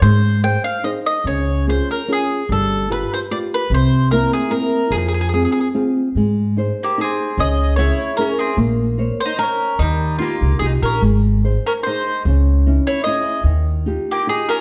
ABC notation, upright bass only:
X:1
M:3/4
L:1/8
Q:1/4=148
K:Fm
V:1 name="Upright bass" clef=bass
A,,4 z2 | D,,4 z2 | G,,,4 z2 | C,,4 z2 |
F,,4 z2 | [K:Ab] A,,4 z2 | D,,4 z2 | B,,,4 z2 |
E,,3 D,, C,, B,,, | A,,,4 z2 | D,,4 z2 | E,,4 z2 |]